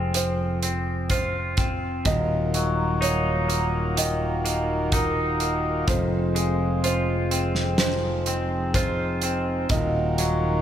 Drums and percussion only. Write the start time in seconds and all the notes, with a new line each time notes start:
0.14 closed hi-hat
0.63 closed hi-hat
1.10 kick, closed hi-hat
1.57 kick, closed hi-hat
2.05 kick, closed hi-hat
2.54 closed hi-hat
3.02 closed hi-hat
3.50 closed hi-hat
3.97 closed hi-hat
4.46 closed hi-hat
4.92 kick, closed hi-hat
5.40 closed hi-hat
5.88 kick, closed hi-hat
6.36 closed hi-hat
6.84 closed hi-hat
7.31 closed hi-hat
7.55 snare
7.78 snare, closed hi-hat
8.26 closed hi-hat
8.74 kick, closed hi-hat
9.22 closed hi-hat
9.69 kick, closed hi-hat
10.18 closed hi-hat